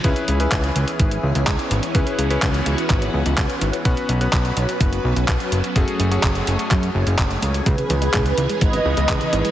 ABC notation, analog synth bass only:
X:1
M:4/4
L:1/16
Q:1/4=126
K:C#m
V:1 name="Analog synth bass" clef=bass
C,, z C,,2 C,,2 C,, z G,,,2 C,, C,, C,, z G,,, z | C,, z C,,2 C,,2 C,, z G,,,2 C,, C,, C,, z G,,, z | B,,, z B,,,2 B,,,2 B,,, z F,,,2 B,,, B,,, B,,, z F,,, z | F,,, z F,,,2 F,,,2 F,,, z F,,2 F,,, F,,, F,,,2 C,,2 |
C,, z C,,2 C,,2 C,, z G,,,2 C,, C,, C,, z G,,, z |]